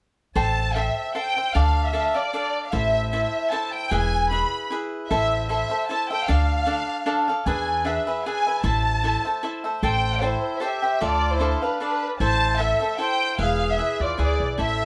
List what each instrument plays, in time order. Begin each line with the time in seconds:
0.35 upright bass A1, cavaquinho A4 C5 E5 G5, violin section A5
0.76 cavaquinho A4 C5 E5 G5, violin section E5
1.15 cavaquinho A4 C5 E5 G5, violin section G5
1.37 cavaquinho C5 E5 G5
1.54 upright bass D2, cavaquinho D4 A4 D5 F5, violin section F5
1.85 violin section E5
1.93 cavaquinho D4 A4 D5 F5
2.14 cavaquinho A4 D5 F5, violin section D5
2.33 cavaquinho D4 A4 D5 F5, violin section D5
2.66 violin section F5
2.72 upright bass A1, cavaquinho E4 A4 C5 E5, violin section E5
3.13 cavaquinho E4 A4 C5 E5, violin section E5
3.51 cavaquinho E4 A4 C5 E5, violin section A5
3.73 violin section G5
3.91 upright bass E1, cavaquinho E4 G#4 B4 E5, violin section G#5
4.30 cavaquinho E4 G#4 B4 E5, violin section B5
4.70 cavaquinho E4 G#4 B4 E5
5.10 upright bass A1, cavaquinho E4 A4 C5 E5, violin section E5
5.49 cavaquinho E4 A4 C5 E5, violin section E5
5.70 cavaquinho A4 C5 E5
5.88 cavaquinho E4 A4 C5 E5, violin section A5
6.09 cavaquinho A4 C5 E5, violin section G5
6.28 upright bass D2, cavaquinho D4 A4 D5 F5, violin section F5
6.66 cavaquinho D4 A4 D5 F5
7.06 cavaquinho D4 A4 D5 F5
7.28 cavaquinho A4 D5 F5
7.46 upright bass E2, cavaquinho D4 G#4 B4 E5, violin section G#5
7.84 cavaquinho D4 G#4 B4 E5, violin section E5
8.07 cavaquinho G#4 B4 E5
8.25 cavaquinho D4 G#4 B4 E5, violin section G#5
8.46 cavaquinho G#4 B4 E5
8.63 upright bass A1, cavaquinho E4 A4 C5 E5, violin section A5
9.04 cavaquinho E4 A4 C5 E5
9.25 cavaquinho A4 C5 E5
9.43 cavaquinho E4 A4 C5 E5
9.64 cavaquinho A4 C5 E5
9.83 upright bass A1, cavaquinho A4 C5 E5 G5, trumpet C5, violin section G5
10.22 trumpet E4, cavaquinho A4 C5 E5 G5, violin section C5
10.60 trumpet G4, cavaquinho A4 C5 E5 G5, violin section E5
10.82 cavaquinho C5 E5 G5
11.01 upright bass D2, cavaquinho D4 A4 D5 F5, trumpet F4, violin section D5
11.34 trumpet E4, violin section C5
11.39 cavaquinho D4 A4 D5 F5
11.62 trumpet D4, cavaquinho A4 D5 F5, violin section B4
11.80 cavaquinho D4 A4 D5 F5, trumpet D4, violin section B4
12.20 upright bass A1, cavaquinho E4 A4 C5 E5, trumpet C5, violin section A5
12.59 cavaquinho E4 A4 C5 E5, trumpet A4, violin section E5
12.80 cavaquinho A4 C5 E5
12.98 cavaquinho E4 A4 C5 E5, trumpet C5, violin section G5
13.38 upright bass E1, cavaquinho E4 G#4 B4 E5, trumpet G#4, violin section F5
13.70 trumpet G#4, violin section E5
13.78 cavaquinho E4 G#4 B4 E5
14.00 upright bass E2, trumpet F4, violin section D5
14.18 upright bass D2, cavaquinho E4 G#4 B4 E5, violin section D5
14.22 trumpet G#4
14.40 upright bass B1
14.58 upright bass A1, cavaquinho E4 A4 C5 E5, trumpet A4, violin section E5